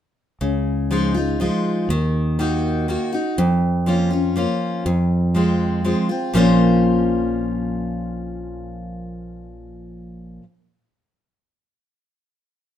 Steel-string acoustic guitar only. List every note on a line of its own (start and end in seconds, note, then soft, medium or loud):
0.41 1.35 C#3 medium
0.91 1.14 F3 medium
0.91 1.15 G#3 medium
0.91 1.15 D#4 medium
0.91 1.13 F4 medium
1.14 1.40 D#4 soft
1.14 1.39 F4 medium
1.40 1.87 F3 soft
1.40 1.87 G#3 medium
1.40 1.87 D#4 medium
1.40 1.88 F4 medium
1.90 2.38 D#3 medium
2.39 2.86 D#3 medium
2.39 2.86 A#3 medium
2.39 2.87 D#4 medium
2.39 2.87 F#4 medium
2.88 3.12 D#3 medium
2.88 3.12 A#3 medium
2.88 3.13 D#4 medium
2.88 3.11 F#4 medium
3.13 3.37 D#4 soft
3.13 3.36 F#4 medium
3.38 4.32 F2 medium
3.86 4.10 F3 medium
3.86 4.11 A#3 medium
3.86 4.11 C#4 medium
3.86 4.09 F4 medium
4.11 4.36 C#4 soft
4.11 4.35 F4 medium
4.36 4.83 F3 medium
4.36 4.83 A#3 medium
4.36 4.83 C#4 medium
4.36 4.84 F4 medium
4.86 5.80 F2 medium
5.35 5.82 F3 medium
5.35 5.82 G#3 medium
5.35 5.82 C4 medium
5.35 5.83 F4 medium
5.84 6.08 F3 medium
5.84 6.08 G#3 medium
5.84 6.09 C4 medium
5.84 6.08 F4 medium
6.09 6.34 C4 soft
6.09 6.33 F4 medium
6.34 10.41 A#2 medium
6.34 10.42 F3 medium
6.34 10.43 A#3 medium
6.34 10.43 C#4 medium
6.34 10.44 F4 medium
6.34 10.45 C5 medium